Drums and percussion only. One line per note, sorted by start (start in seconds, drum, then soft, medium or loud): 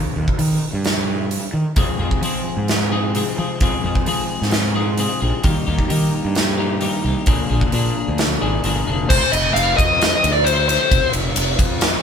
0.28 kick medium
0.39 open hi-hat soft
0.85 snare medium
0.85 open hi-hat soft
1.31 open hi-hat soft
1.76 kick medium
1.76 open hi-hat soft
2.11 kick medium
2.23 open hi-hat soft
2.68 snare medium
2.68 open hi-hat soft
3.15 open hi-hat soft
3.61 kick medium
3.61 open hi-hat soft
3.95 kick medium
4.06 open hi-hat soft
4.42 snare soft
4.51 snare medium
4.51 open hi-hat soft
4.98 open hi-hat soft
5.44 kick loud
5.44 open hi-hat soft
5.79 kick medium
5.90 open hi-hat soft
6.35 snare medium
6.35 open hi-hat soft
6.81 open hi-hat soft
7.26 kick loud
7.26 open hi-hat soft
7.61 kick medium
7.72 open hi-hat soft
8.18 snare loud
8.18 open hi-hat soft
8.64 open hi-hat soft
9.10 kick loud
9.10 crash loud
9.33 ride medium
9.56 ride loud
9.78 kick medium
9.78 ride medium
10.01 snare medium
10.01 ride medium
10.24 ride medium
10.47 ride medium
10.69 snare soft
10.69 ride medium
10.91 kick loud
10.91 ride loud
11.13 ride medium
11.36 ride loud
11.59 kick medium
11.59 ride medium
11.81 snare loud
11.81 ride medium